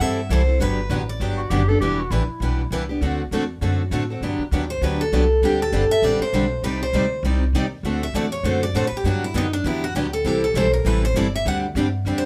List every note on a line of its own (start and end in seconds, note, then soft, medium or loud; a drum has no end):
0.00 0.29 G2 medium
0.00 0.19 E3 medium
0.00 0.19 G3 medium
0.00 0.20 C4 medium
0.00 0.19 E4 medium
0.00 0.20 A4 medium
0.00 0.31 E5 loud
0.29 0.59 C2 medium
0.29 0.41 E3 medium
0.29 0.41 G3 medium
0.29 0.41 C4 medium
0.29 0.41 E4 loud
0.29 0.41 A4 loud
0.29 0.59 C5 medium
0.47 0.60 C4 soft
0.47 0.60 E4 soft
0.47 0.59 A4 medium
0.60 0.89 G1 medium
0.60 0.79 D3 medium
0.60 0.79 F#3 medium
0.60 0.79 B3 medium
0.60 0.79 D4 medium
0.60 0.80 G4 medium
0.60 1.09 B4 medium
0.89 1.19 A1 medium
0.89 1.00 D3 medium
0.89 1.01 F#3 medium
0.89 1.01 B3 medium
0.89 1.01 D4 medium
0.89 1.01 G4 loud
1.09 1.65 D5 medium
1.20 1.50 G1 medium
1.20 1.39 D3 medium
1.20 1.40 F#3 medium
1.20 1.40 B3 medium
1.20 1.40 D4 medium
1.20 1.40 G4 medium
1.37 1.52 F#4 medium
1.50 1.80 F#1 medium
1.50 1.61 D3 medium
1.50 1.61 F#3 loud
1.50 1.61 B3 medium
1.50 1.61 D4 loud
1.50 1.70 G4 medium
1.50 1.61 G4 loud
1.68 1.81 B3 soft
1.68 1.81 D4 medium
1.68 1.80 G4 medium
1.68 1.80 A4 loud
1.81 2.10 E1 medium
1.81 2.00 E3 medium
1.81 2.00 G3 medium
1.81 2.00 B3 medium
1.81 2.01 D4 medium
1.81 2.01 E4 medium
1.81 2.01 G4 loud
1.81 2.01 G4 medium
1.81 2.01 B4 medium
2.00 2.13 F#4 medium
2.10 2.27 A1 loud
2.10 2.22 E3 medium
2.10 2.22 G3 medium
2.10 2.22 B3 medium
2.10 2.22 D4 medium
2.10 2.71 E4 medium
2.10 2.22 E4 medium
2.10 2.22 G4 medium
2.10 2.23 B4 medium
2.28 muted upright bass stroke soft
2.40 2.70 B1 medium
2.40 2.61 E3 medium
2.40 2.61 G3 medium
2.40 2.61 B3 medium
2.40 2.61 D4 medium
2.40 2.61 E4 medium
2.40 2.61 G4 medium
2.40 2.61 B4 medium
2.71 3.00 C2 medium
2.71 2.82 E3 medium
2.71 2.82 G3 medium
2.71 2.82 B3 medium
2.71 2.82 D4 medium
2.71 2.83 E4 medium
2.71 2.83 G4 loud
2.71 2.83 B4 medium
2.89 3.02 B3 soft
2.89 3.02 D4 medium
2.89 3.01 G4 medium
3.01 3.30 D2 medium
3.01 3.21 D3 medium
3.01 3.21 A3 medium
3.01 3.21 C4 medium
3.01 3.21 F#4 medium
3.01 3.21 A4 medium
3.31 3.61 E2 medium
3.31 3.43 D3 medium
3.31 3.43 A3 medium
3.31 3.43 C4 medium
3.31 3.43 F#4 medium
3.31 3.43 A4 medium
3.61 3.90 F#2 medium
3.61 3.81 D3 medium
3.61 3.81 A3 medium
3.61 3.81 C4 medium
3.61 3.81 F#4 medium
3.61 3.81 A4 medium
3.91 4.20 A2 medium
3.91 4.02 D3 medium
3.91 4.02 A3 medium
3.91 4.03 C4 medium
3.91 4.03 F#4 medium
3.91 4.03 A4 medium
4.10 4.23 C4 soft
4.10 4.23 F#4 medium
4.10 4.22 A4 medium
4.21 4.38 G2 medium
4.21 4.42 D3 medium
4.21 4.42 F#3 medium
4.21 4.42 B3 medium
4.21 4.42 D4 medium
4.21 4.42 G4 medium
4.39 muted upright bass stroke soft
4.51 4.81 D#2 medium
4.51 4.63 D3 medium
4.51 4.63 F#3 medium
4.51 4.63 B3 medium
4.51 4.63 D4 medium
4.51 4.64 G4 medium
4.70 4.82 C5 medium
4.81 5.11 D2 medium
4.81 5.02 D3 medium
4.81 5.02 F#3 medium
4.81 5.02 B3 medium
4.81 5.02 D4 medium
4.81 5.02 G4 medium
4.81 5.00 B4 medium
5.01 5.40 A4 medium
5.12 5.41 C2 medium
5.12 5.23 D3 medium
5.12 5.23 F#3 medium
5.12 5.23 B3 medium
5.12 5.23 D4 medium
5.12 5.23 G4 medium
5.42 5.72 D2 medium
5.42 5.62 D3 medium
5.42 5.62 G3 medium
5.42 5.62 C4 medium
5.42 5.62 D4 medium
5.42 5.62 G4 medium
5.42 5.61 G4 medium
5.62 6.01 A4 medium
5.72 5.89 G1 medium
5.72 5.83 D3 medium
5.72 5.83 G3 medium
5.72 5.83 C4 medium
5.72 5.84 D4 medium
5.72 5.84 G4 medium
5.90 6.04 E5 loud
5.90 muted upright bass stroke soft
6.02 6.19 A1 medium
6.02 6.22 D3 medium
6.02 6.22 G3 medium
6.02 6.23 C4 medium
6.02 6.23 D4 medium
6.02 6.23 G4 medium
6.02 6.21 D5 medium
6.20 6.61 C5 medium
6.20 muted upright bass stroke soft
6.33 6.62 B1 medium
6.33 6.44 D3 medium
6.33 6.44 G3 medium
6.33 6.44 C4 medium
6.33 6.44 D4 medium
6.33 6.45 G4 medium
6.63 6.92 C2 medium
6.63 6.83 C3 medium
6.63 6.83 G3 medium
6.63 6.83 C4 medium
6.63 6.83 D#4 medium
6.63 6.84 G4 medium
6.63 6.81 B4 medium
6.63 6.84 D5 medium
6.83 7.22 C5 medium
6.93 7.22 D2 medium
6.93 7.04 C3 medium
6.93 7.04 G3 medium
6.93 7.05 C4 medium
6.93 7.05 D#4 medium
6.93 7.05 G4 medium
6.93 7.05 D5 medium
7.23 7.52 C2 medium
7.23 7.43 C3 medium
7.23 7.43 G3 medium
7.23 7.43 C4 medium
7.23 7.44 D#4 medium
7.23 7.44 G4 medium
7.23 7.44 D5 medium
7.53 7.82 D#2 medium
7.53 7.65 C3 medium
7.53 7.65 G3 medium
7.53 7.65 C4 medium
7.53 7.65 D#4 medium
7.53 7.65 G4 medium
7.53 7.65 D5 loud
7.83 8.13 D2 medium
7.83 8.03 D3 medium
7.83 8.04 A3 medium
7.83 8.04 C4 medium
7.83 8.04 F#4 medium
7.83 8.04 A4 medium
8.03 8.15 E5 medium
8.14 8.43 E2 medium
8.14 8.25 D3 medium
8.14 8.25 A3 medium
8.14 8.25 C4 medium
8.14 8.25 F#4 medium
8.14 8.25 A4 medium
8.14 8.32 D5 medium
8.32 8.44 C#5 medium
8.43 8.73 F#2 medium
8.43 8.63 D3 medium
8.43 8.63 A3 medium
8.43 8.64 C4 medium
8.43 8.64 F#4 medium
8.43 8.64 A4 medium
8.43 8.62 C5 medium
8.63 8.75 D5 loud
8.74 8.90 A2 medium
8.74 8.85 D3 medium
8.74 8.85 A3 medium
8.74 8.85 C4 medium
8.74 8.85 F#4 medium
8.74 8.85 A4 loud
8.74 8.85 C5 medium
8.87 8.96 B4 medium
8.91 muted upright bass stroke soft
8.97 9.05 G4 medium
9.04 9.33 G2 medium
9.04 9.24 D3 medium
9.04 9.24 F#3 medium
9.04 9.24 B3 medium
9.04 9.24 D4 medium
9.04 9.23 F#4 medium
9.04 9.24 G4 medium
9.24 9.35 E4 medium
9.34 9.63 F#2 medium
9.34 9.45 D3 medium
9.34 9.45 F#3 medium
9.34 9.45 B3 medium
9.34 9.45 D4 medium
9.34 9.53 D#4 medium
9.34 9.46 G4 medium
9.53 9.65 D4 medium
9.64 9.93 E2 medium
9.64 9.84 D3 medium
9.64 9.84 F#3 medium
9.64 9.84 B3 medium
9.64 9.84 D4 medium
9.64 9.83 E4 medium
9.64 9.85 G4 medium
9.84 9.95 F#4 medium
9.94 10.24 D2 medium
9.94 10.06 D3 medium
9.94 10.06 F#3 medium
9.94 10.06 B3 medium
9.94 10.06 D4 medium
9.94 10.12 G4 medium
9.94 10.06 G4 medium
10.13 10.27 A4 medium
10.25 10.54 C2 medium
10.25 10.44 C3 medium
10.25 10.44 E3 medium
10.25 10.44 G3 medium
10.25 10.44 C4 medium
10.25 10.44 E4 medium
10.25 10.43 G4 medium
10.25 10.45 A4 medium
10.44 10.55 A4 medium
10.54 10.84 B1 medium
10.54 10.66 C3 medium
10.54 10.66 E3 medium
10.54 10.66 G3 medium
10.54 10.66 C4 medium
10.54 10.66 E4 loud
10.54 10.66 A4 medium
10.54 10.73 C5 loud
10.74 10.87 A#4 medium
10.85 11.14 A1 medium
10.85 11.04 C3 medium
10.85 11.04 E3 medium
10.85 11.05 G3 medium
10.85 11.05 C4 medium
10.85 11.05 E4 medium
10.85 11.05 A4 medium
10.85 11.03 B4 medium
11.05 11.16 C5 medium
11.14 11.44 G1 medium
11.14 11.26 C3 medium
11.14 11.26 E3 medium
11.14 11.26 G3 medium
11.14 11.26 C4 loud
11.14 11.26 E4 medium
11.14 11.26 A4 medium
11.14 11.33 D5 medium
11.36 11.46 E5 medium
11.45 11.74 D2 medium
11.45 11.64 D3 medium
11.45 11.65 G3 medium
11.45 11.65 C4 medium
11.45 11.65 D4 medium
11.45 11.65 G4 medium
11.45 11.58 F#5 medium
11.75 12.04 G2 loud
11.75 11.86 D3 medium
11.75 11.86 G3 medium
11.75 11.86 C4 loud
11.75 11.86 D4 medium
11.75 11.86 G4 medium
12.05 12.26 E2 medium
12.05 12.25 D3 medium
12.05 12.25 G3 medium
12.05 12.25 C4 medium
12.05 12.25 D4 medium
12.05 12.25 G4 medium
12.18 12.26 C5 medium